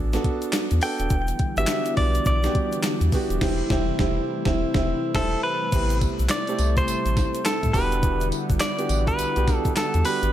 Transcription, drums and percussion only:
0.13 snare, closed hi-hat, shaker
0.24 kick, closed hi-hat
0.42 closed hi-hat, shaker
0.53 snare, clap, closed hi-hat, shaker
0.71 closed hi-hat, shaker
0.81 open hi-hat, shaker
0.99 closed hi-hat, shaker
1.10 kick, closed hi-hat, shaker
1.27 closed hi-hat, shaker
1.39 kick, closed hi-hat
1.57 closed hi-hat, shaker
1.67 snare, clap, closed hi-hat, shaker
1.85 closed hi-hat, shaker
1.97 kick, open hi-hat
2.14 closed hi-hat, shaker
2.25 kick, closed hi-hat, shaker
2.43 snare, closed hi-hat, shaker
2.55 kick, closed hi-hat
2.72 closed hi-hat, shaker
2.83 snare, clap, closed hi-hat, shaker
3.01 closed hi-hat, shaker
3.12 kick, open hi-hat, shaker
3.30 closed hi-hat, shaker
3.41 kick, snare, crash
3.70 kick, snare
3.99 kick, snare
4.45 kick, snare
4.74 kick, snare
5.15 kick, snare, crash
5.72 kick, closed hi-hat, crash, shaker
5.90 closed hi-hat, shaker
6.01 kick, closed hi-hat, tambourine
6.19 closed hi-hat, shaker
6.29 snare, clap, closed hi-hat, tambourine, shaker
6.47 closed hi-hat, shaker
6.59 closed hi-hat, tambourine
6.77 kick, closed hi-hat, shaker
6.88 closed hi-hat, tambourine, shaker
7.06 closed hi-hat, shaker
7.17 kick, snare, closed hi-hat, tambourine
7.34 closed hi-hat, shaker
7.45 snare, clap, closed hi-hat, tambourine, shaker
7.63 kick, closed hi-hat, shaker
7.74 kick, open hi-hat, tambourine, shaker
7.92 closed hi-hat, shaker
8.03 kick, closed hi-hat, shaker
8.21 closed hi-hat, shaker
8.32 closed hi-hat, tambourine
8.50 kick, closed hi-hat, shaker
8.60 snare, clap, closed hi-hat, tambourine, shaker
8.79 closed hi-hat, shaker
8.89 closed hi-hat, tambourine
9.07 kick, closed hi-hat, shaker
9.19 closed hi-hat, tambourine, shaker
9.36 closed hi-hat, shaker
9.48 kick, snare, closed hi-hat, tambourine
9.65 kick, closed hi-hat, shaker
9.76 snare, clap, closed hi-hat, tambourine, shaker
9.94 closed hi-hat, shaker
10.05 open hi-hat, tambourine, shaker
10.22 closed hi-hat, shaker

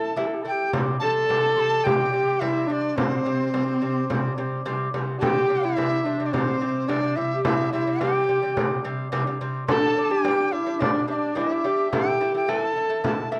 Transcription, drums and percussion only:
0.02 frame drum
0.18 frame drum
0.73 frame drum
1.02 frame drum
1.16 frame drum
1.30 frame drum
1.86 frame drum
2.28 frame drum
2.42 frame drum
2.98 frame drum
3.26 frame drum
3.40 frame drum
3.54 frame drum
4.10 frame drum
4.52 frame drum
4.66 frame drum
4.94 frame drum
5.23 frame drum
5.50 frame drum
5.78 frame drum
6.06 frame drum
6.34 frame drum
6.90 frame drum
7.17 frame drum
7.45 frame drum
7.74 frame drum
8.01 frame drum
8.29 frame drum
8.57 frame drum
9.13 frame drum
9.41 frame drum
9.69 frame drum
9.97 frame drum
10.25 frame drum
10.54 frame drum
10.82 frame drum
11.37 frame drum
11.93 frame drum
12.21 frame drum
12.49 frame drum
12.77 frame drum
13.04 frame drum
13.32 frame drum

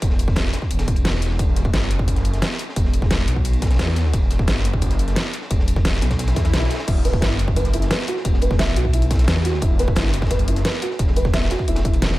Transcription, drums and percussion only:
0.02 kick, closed hi-hat, ride
0.10 snare
0.19 closed hi-hat, ride
0.28 kick, snare
0.36 snare, closed hi-hat, ride
0.45 snare
0.53 snare, closed hi-hat, ride
0.62 kick
0.71 closed hi-hat, ride
0.79 snare, closed hi-hat, ride
0.88 kick, closed hi-hat
0.96 closed hi-hat, ride
1.05 snare, closed hi-hat, ride
1.13 snare
1.22 closed hi-hat, ride
1.31 snare
1.39 kick, closed hi-hat, ride
1.55 snare, closed hi-hat, ride
1.65 kick, ride
1.73 snare, closed hi-hat, ride
1.91 closed hi-hat, ride
1.99 kick, ride
2.08 kick, closed hi-hat, ride
2.16 snare, closed hi-hat
2.25 closed hi-hat, ride
2.34 snare, closed hi-hat
2.42 snare, closed hi-hat, ride
2.51 snare
2.59 closed hi-hat, ride
2.69 snare
2.76 kick, closed hi-hat, ride
2.85 snare
2.94 closed hi-hat, ride
3.02 kick, snare
3.10 snare, closed hi-hat, ride
3.19 snare
3.27 closed hi-hat, ride
3.36 kick
3.45 closed hi-hat, ride
3.53 closed hi-hat
3.62 kick, snare, closed hi-hat, ride
3.66 snare, ride
3.71 snare, closed hi-hat, ride
3.74 snare, ride
3.79 snare, closed hi-hat, ride
3.88 snare
3.96 closed hi-hat, ride
4.05 snare
4.13 kick, closed hi-hat, ride
4.30 snare, closed hi-hat, ride
4.39 kick, ride
4.47 snare, closed hi-hat, ride
4.65 closed hi-hat, ride
4.74 kick, ride
4.82 kick, closed hi-hat, ride
4.90 snare, closed hi-hat
4.99 closed hi-hat, ride
5.08 snare, closed hi-hat
5.15 snare, closed hi-hat, ride
5.26 snare
5.34 closed hi-hat, ride
5.42 snare
5.51 kick, closed hi-hat, ride
5.60 snare
5.68 closed hi-hat, ride
5.76 kick, snare
5.85 snare, closed hi-hat, ride
5.93 snare, closed hi-hat
6.02 snare, closed hi-hat, ride
6.11 kick, snare, closed hi-hat, ride
6.19 snare, closed hi-hat, ride
6.27 snare, closed hi-hat, ride
6.36 kick, snare, closed hi-hat, ride
6.45 snare, closed hi-hat, ride
6.54 snare, closed hi-hat, ride
6.62 snare, ride
6.70 snare, closed hi-hat, ride
6.75 snare, ride
6.80 snare, ride
6.88 kick, closed hi-hat, crash, ride
7.05 snare, closed hi-hat, ride
7.13 kick, ride
7.22 snare, closed hi-hat, ride
7.39 closed hi-hat, ride
7.47 kick, ride
7.56 kick, closed hi-hat, ride
7.65 snare, closed hi-hat
7.73 closed hi-hat, ride
7.82 snare, closed hi-hat
7.91 snare, closed hi-hat, ride
7.99 snare
8.08 closed hi-hat, ride
8.17 snare
8.25 kick, closed hi-hat, ride
8.34 snare
8.41 closed hi-hat, ride
8.51 kick, snare
8.59 snare, closed hi-hat, ride
8.69 snare
8.76 closed hi-hat, ride
8.85 kick
8.93 closed hi-hat, ride
9.02 closed hi-hat
9.11 kick, snare, closed hi-hat, ride
9.15 snare, ride
9.19 snare, closed hi-hat, ride
9.23 snare, ride
9.28 snare, closed hi-hat, ride
9.36 snare
9.45 closed hi-hat, ride
9.54 snare
9.62 kick, closed hi-hat, ride
9.79 snare, closed hi-hat, ride
9.87 kick, ride
9.96 snare, closed hi-hat, ride
10.13 closed hi-hat, ride
10.22 kick, snare, ride
10.26 snare, ride
10.31 kick, closed hi-hat, ride
10.39 closed hi-hat
10.48 closed hi-hat, ride
10.56 snare, closed hi-hat
10.65 snare, closed hi-hat, ride
10.74 snare
10.82 closed hi-hat, ride
10.91 snare
10.99 kick, closed hi-hat, ride
11.07 snare
11.16 closed hi-hat, ride
11.25 kick, snare
11.33 snare, closed hi-hat, ride
11.42 snare
11.51 snare, closed hi-hat, ride
11.59 kick
11.68 closed hi-hat, ride
11.76 snare, closed hi-hat, ride
11.85 kick, closed hi-hat
11.94 closed hi-hat, ride
12.02 snare, closed hi-hat, ride
12.11 snare

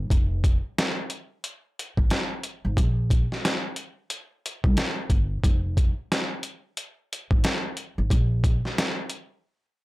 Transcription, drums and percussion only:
0.10 kick, closed hi-hat
0.44 kick, closed hi-hat
0.78 cross-stick, snare, closed hi-hat
1.10 closed hi-hat
1.44 closed hi-hat
1.79 closed hi-hat
1.97 kick
2.10 cross-stick, snare, closed hi-hat
2.43 closed hi-hat
2.77 kick, closed hi-hat
3.10 kick, closed hi-hat
3.32 snare
3.45 cross-stick, snare, closed hi-hat
3.76 closed hi-hat
4.10 closed hi-hat
4.46 closed hi-hat
4.64 kick
4.77 cross-stick, snare, closed hi-hat
5.10 kick, closed hi-hat
5.44 kick, closed hi-hat
5.77 kick, closed hi-hat
6.12 cross-stick, snare, closed hi-hat
6.43 closed hi-hat
6.77 closed hi-hat
7.13 closed hi-hat
7.31 kick
7.44 cross-stick, snare, closed hi-hat
7.77 closed hi-hat
8.10 kick, closed hi-hat
8.44 kick, closed hi-hat
8.65 snare
8.78 cross-stick, snare, closed hi-hat
9.10 closed hi-hat

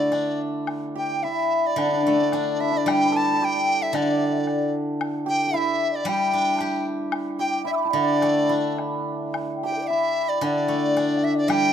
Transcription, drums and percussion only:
0.12 high woodblock, low woodblock
0.67 high woodblock
1.78 high woodblock
2.32 high woodblock
2.88 high woodblock
3.95 high woodblock
4.47 high woodblock
5.01 high woodblock
6.06 high woodblock
6.59 high woodblock
7.12 high woodblock
7.67 low woodblock
8.22 high woodblock
8.78 high woodblock, low woodblock
9.34 high woodblock
10.42 high woodblock
10.97 high woodblock
11.50 high woodblock

